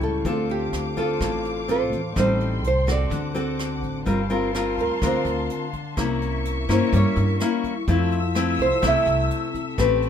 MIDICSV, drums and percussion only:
0, 0, Header, 1, 2, 480
1, 0, Start_track
1, 0, Tempo, 476569
1, 252, Time_signature, 4, 2, 24, 8
1, 10167, End_track
2, 0, Start_track
2, 0, Title_t, "Drums"
2, 10, Note_on_c, 9, 42, 23
2, 11, Note_on_c, 9, 36, 21
2, 111, Note_off_c, 9, 42, 0
2, 112, Note_off_c, 9, 36, 0
2, 251, Note_on_c, 9, 36, 52
2, 251, Note_on_c, 9, 42, 37
2, 352, Note_off_c, 9, 36, 0
2, 352, Note_off_c, 9, 42, 0
2, 495, Note_on_c, 9, 42, 22
2, 595, Note_off_c, 9, 42, 0
2, 734, Note_on_c, 9, 37, 52
2, 734, Note_on_c, 9, 42, 38
2, 834, Note_off_c, 9, 37, 0
2, 834, Note_off_c, 9, 42, 0
2, 976, Note_on_c, 9, 36, 21
2, 977, Note_on_c, 9, 42, 23
2, 1076, Note_off_c, 9, 36, 0
2, 1078, Note_off_c, 9, 42, 0
2, 1216, Note_on_c, 9, 36, 59
2, 1217, Note_on_c, 9, 37, 53
2, 1217, Note_on_c, 9, 42, 38
2, 1316, Note_off_c, 9, 36, 0
2, 1318, Note_off_c, 9, 37, 0
2, 1318, Note_off_c, 9, 42, 0
2, 1459, Note_on_c, 9, 42, 26
2, 1560, Note_off_c, 9, 42, 0
2, 1699, Note_on_c, 9, 42, 39
2, 1800, Note_off_c, 9, 42, 0
2, 1938, Note_on_c, 9, 36, 21
2, 1940, Note_on_c, 9, 42, 26
2, 2038, Note_off_c, 9, 36, 0
2, 2040, Note_off_c, 9, 42, 0
2, 2178, Note_on_c, 9, 36, 54
2, 2180, Note_on_c, 9, 37, 52
2, 2180, Note_on_c, 9, 42, 39
2, 2279, Note_off_c, 9, 36, 0
2, 2280, Note_off_c, 9, 37, 0
2, 2280, Note_off_c, 9, 42, 0
2, 2420, Note_on_c, 9, 42, 26
2, 2521, Note_off_c, 9, 42, 0
2, 2661, Note_on_c, 9, 42, 42
2, 2761, Note_off_c, 9, 42, 0
2, 2896, Note_on_c, 9, 36, 22
2, 2899, Note_on_c, 9, 37, 57
2, 2899, Note_on_c, 9, 42, 26
2, 2997, Note_off_c, 9, 36, 0
2, 3000, Note_off_c, 9, 37, 0
2, 3000, Note_off_c, 9, 42, 0
2, 3136, Note_on_c, 9, 36, 55
2, 3136, Note_on_c, 9, 42, 42
2, 3237, Note_off_c, 9, 36, 0
2, 3237, Note_off_c, 9, 42, 0
2, 3378, Note_on_c, 9, 42, 28
2, 3479, Note_off_c, 9, 42, 0
2, 3617, Note_on_c, 9, 37, 55
2, 3617, Note_on_c, 9, 42, 43
2, 3718, Note_off_c, 9, 37, 0
2, 3718, Note_off_c, 9, 42, 0
2, 3855, Note_on_c, 9, 36, 22
2, 3860, Note_on_c, 9, 42, 23
2, 3956, Note_off_c, 9, 36, 0
2, 3961, Note_off_c, 9, 42, 0
2, 4095, Note_on_c, 9, 36, 51
2, 4099, Note_on_c, 9, 42, 38
2, 4196, Note_off_c, 9, 36, 0
2, 4199, Note_off_c, 9, 42, 0
2, 4337, Note_on_c, 9, 42, 25
2, 4438, Note_off_c, 9, 42, 0
2, 4577, Note_on_c, 9, 37, 56
2, 4577, Note_on_c, 9, 42, 37
2, 4678, Note_off_c, 9, 37, 0
2, 4678, Note_off_c, 9, 42, 0
2, 4815, Note_on_c, 9, 36, 23
2, 4820, Note_on_c, 9, 42, 25
2, 4916, Note_off_c, 9, 36, 0
2, 4921, Note_off_c, 9, 42, 0
2, 5054, Note_on_c, 9, 36, 53
2, 5056, Note_on_c, 9, 37, 54
2, 5056, Note_on_c, 9, 42, 41
2, 5155, Note_off_c, 9, 36, 0
2, 5156, Note_off_c, 9, 37, 0
2, 5156, Note_off_c, 9, 42, 0
2, 5297, Note_on_c, 9, 42, 29
2, 5397, Note_off_c, 9, 42, 0
2, 5536, Note_on_c, 9, 42, 41
2, 5637, Note_off_c, 9, 42, 0
2, 5774, Note_on_c, 9, 42, 28
2, 5775, Note_on_c, 9, 36, 24
2, 5875, Note_off_c, 9, 42, 0
2, 5876, Note_off_c, 9, 36, 0
2, 6016, Note_on_c, 9, 36, 57
2, 6017, Note_on_c, 9, 37, 57
2, 6017, Note_on_c, 9, 42, 45
2, 6117, Note_off_c, 9, 36, 0
2, 6118, Note_off_c, 9, 37, 0
2, 6118, Note_off_c, 9, 42, 0
2, 6261, Note_on_c, 9, 42, 27
2, 6362, Note_off_c, 9, 42, 0
2, 6499, Note_on_c, 9, 42, 48
2, 6599, Note_off_c, 9, 42, 0
2, 6737, Note_on_c, 9, 36, 22
2, 6742, Note_on_c, 9, 37, 57
2, 6742, Note_on_c, 9, 42, 26
2, 6838, Note_off_c, 9, 36, 0
2, 6843, Note_off_c, 9, 37, 0
2, 6843, Note_off_c, 9, 42, 0
2, 6977, Note_on_c, 9, 36, 59
2, 6980, Note_on_c, 9, 42, 44
2, 7078, Note_off_c, 9, 36, 0
2, 7081, Note_off_c, 9, 42, 0
2, 7217, Note_on_c, 9, 42, 29
2, 7318, Note_off_c, 9, 42, 0
2, 7455, Note_on_c, 9, 37, 58
2, 7455, Note_on_c, 9, 42, 43
2, 7556, Note_off_c, 9, 37, 0
2, 7556, Note_off_c, 9, 42, 0
2, 7695, Note_on_c, 9, 36, 23
2, 7696, Note_on_c, 9, 42, 26
2, 7795, Note_off_c, 9, 36, 0
2, 7797, Note_off_c, 9, 42, 0
2, 7934, Note_on_c, 9, 36, 58
2, 7934, Note_on_c, 9, 42, 42
2, 8035, Note_off_c, 9, 36, 0
2, 8035, Note_off_c, 9, 42, 0
2, 8173, Note_on_c, 9, 42, 26
2, 8274, Note_off_c, 9, 42, 0
2, 8410, Note_on_c, 9, 37, 62
2, 8410, Note_on_c, 9, 42, 43
2, 8511, Note_off_c, 9, 37, 0
2, 8511, Note_off_c, 9, 42, 0
2, 8652, Note_on_c, 9, 36, 25
2, 8652, Note_on_c, 9, 42, 23
2, 8753, Note_off_c, 9, 36, 0
2, 8753, Note_off_c, 9, 42, 0
2, 8891, Note_on_c, 9, 37, 56
2, 8891, Note_on_c, 9, 42, 42
2, 8892, Note_on_c, 9, 36, 55
2, 8992, Note_off_c, 9, 37, 0
2, 8992, Note_off_c, 9, 42, 0
2, 8993, Note_off_c, 9, 36, 0
2, 9135, Note_on_c, 9, 42, 27
2, 9236, Note_off_c, 9, 42, 0
2, 9373, Note_on_c, 9, 42, 41
2, 9474, Note_off_c, 9, 42, 0
2, 9613, Note_on_c, 9, 36, 22
2, 9617, Note_on_c, 9, 42, 26
2, 9714, Note_off_c, 9, 36, 0
2, 9718, Note_off_c, 9, 42, 0
2, 9852, Note_on_c, 9, 36, 60
2, 9853, Note_on_c, 9, 37, 56
2, 9853, Note_on_c, 9, 42, 39
2, 9953, Note_off_c, 9, 36, 0
2, 9954, Note_off_c, 9, 37, 0
2, 9954, Note_off_c, 9, 42, 0
2, 10093, Note_on_c, 9, 42, 27
2, 10167, Note_off_c, 9, 42, 0
2, 10167, End_track
0, 0, End_of_file